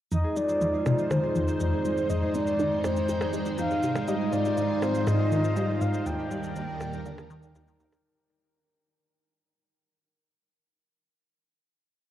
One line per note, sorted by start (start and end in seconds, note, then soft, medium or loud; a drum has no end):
0.11 4.05 F2 medium
0.11 0.22 F2 medium
0.11 6.02 G#3 medium
0.11 0.36 D#4 medium
0.11 4.04 D#4 medium
0.11 2.08 F4 medium
0.11 4.04 C5 medium
0.11 0.38 D#5 loud
0.11 shaker medium
0.24 0.73 G#4 medium
0.36 0.54 G#3 medium
0.36 0.61 D#4 medium
0.36 1.12 D5 loud
0.36 shaker medium
0.49 0.98 C5 medium
0.49 shaker soft
0.61 0.72 F2 medium
0.61 0.85 D#4 medium
0.61 shaker medium
0.73 1.23 G#4 medium
0.86 0.96 C3 medium
0.86 1.10 D#4 medium
0.86 percussion blips soft
0.86 shaker medium
0.98 1.47 C5 medium
0.98 shaker soft
1.11 1.28 D#3 medium
1.11 1.35 D#4 medium
1.11 2.11 C5 loud
1.11 percussion blips medium
1.11 shaker medium
1.23 1.72 G#4 medium
1.35 1.53 F2 medium
1.35 1.60 D#4 medium
1.35 shaker medium
1.48 1.97 C5 medium
1.48 shaker soft
1.60 1.71 F2 medium
1.60 1.85 D#4 medium
1.60 shaker medium
1.73 2.22 G#4 medium
1.85 2.03 G#3 medium
1.85 2.09 D#4 medium
1.85 shaker medium
1.97 2.46 C5 medium
1.97 shaker soft
2.10 2.20 F2 medium
2.10 2.34 D#4 medium
2.10 2.36 D#5 medium
2.10 4.06 G5 medium
2.10 shaker medium
2.22 2.71 G#4 medium
2.35 2.45 C3 medium
2.35 2.59 D#4 medium
2.35 2.86 D5 loud
2.35 shaker medium
2.47 2.96 C5 medium
2.47 shaker medium
2.59 2.77 D#3 medium
2.59 2.84 D#4 medium
2.59 shaker medium
2.72 3.21 G#4 medium
2.84 3.02 F2 medium
2.84 3.09 D#4 medium
2.84 3.34 C5 medium
2.84 percussion blips soft
2.84 shaker medium
2.96 3.46 C5 medium
2.96 shaker soft
3.09 3.19 F2 medium
3.09 3.33 D#4 medium
3.09 shaker medium
3.21 3.70 G#4 medium
3.21 percussion blips medium
3.21 shaker soft
3.34 3.51 G#3 medium
3.34 3.58 D#4 medium
3.34 shaker medium
3.46 3.95 C5 medium
3.46 shaker soft
3.58 3.69 F2 medium
3.58 3.83 D#4 medium
3.58 4.10 F5 medium
3.58 shaker medium
3.71 4.20 G#4 medium
3.71 shaker soft
3.83 3.94 C3 medium
3.83 4.08 D#4 medium
3.83 shaker medium
3.95 4.45 C5 medium
3.95 percussion blips medium
3.95 shaker soft
4.08 6.04 G#2 medium
4.08 4.26 G3 medium
4.08 4.32 D#4 medium
4.08 6.04 D#4 medium
4.08 6.04 F4 medium
4.08 6.04 C5 medium
4.08 4.34 D#5 loud
4.08 shaker medium
4.20 4.70 G#4 medium
4.33 4.50 G#2 medium
4.33 4.57 D#4 medium
4.33 4.83 D5 loud
4.33 shaker medium
4.45 4.94 C5 medium
4.45 shaker soft
4.57 4.68 G#2 medium
4.57 4.82 D#4 medium
4.57 shaker medium
4.70 5.19 G#4 medium
4.82 5.00 C4 medium
4.82 5.07 D#4 medium
4.82 5.08 C5 medium
4.82 percussion blips soft
4.82 shaker medium
4.95 5.44 C5 medium
4.95 shaker medium
5.07 5.18 G#2 medium
5.07 5.31 D#4 medium
5.07 5.83 D#5 loud
5.07 percussion blips medium
5.07 shaker medium
5.20 5.69 G#4 medium
5.32 5.43 D#3 medium
5.32 5.56 D#4 medium
5.32 shaker medium
5.44 5.94 C5 medium
5.44 shaker soft
5.57 5.74 G3 medium
5.57 5.81 D#4 medium
5.57 shaker medium
5.69 6.25 G#4 medium
5.81 5.99 G#2 medium
5.81 6.12 D#4 medium
5.81 6.08 F5 loud
5.81 shaker medium
5.94 7.92 C5 medium
5.94 shaker medium
6.06 6.17 D#2 medium
6.06 8.02 D#2 medium
6.06 8.03 D#3 medium
6.06 8.03 G3 medium
6.06 6.31 D4 medium
6.06 8.03 A#4 medium
6.06 8.03 D5 medium
6.06 7.80 G5 loud
6.06 shaker medium
6.19 6.68 G4 loud
6.31 6.49 G3 medium
6.31 6.56 D4 medium
6.31 shaker medium
6.44 6.93 A#4 medium
6.44 shaker soft
6.56 6.67 D#2 medium
6.56 6.80 D4 medium
6.56 shaker medium
6.68 7.18 G4 medium
6.81 6.91 A#2 medium
6.81 7.05 D4 medium
6.81 percussion blips soft
6.81 shaker medium
6.93 7.30 A#4 medium
6.93 shaker medium
7.06 7.23 D3 medium
7.06 7.49 D4 medium
7.06 shaker medium
7.18 9.53 G4 medium
7.18 percussion blips medium
7.18 shaker soft
7.30 7.54 D#3 loud
7.30 7.80 A#4 medium
7.30 shaker medium
7.43 7.55 D#4 medium
7.43 shaker soft
7.55 7.73 D#2 medium
7.55 7.98 D#4 medium
7.55 shaker medium
7.67 9.23 G5 medium
7.67 shaker soft
7.80 8.03 D#2 loud
7.80 9.92 A#4 medium
7.80 shaker medium
7.92 10.72 D4 medium
7.92 percussion blips medium
7.92 shaker soft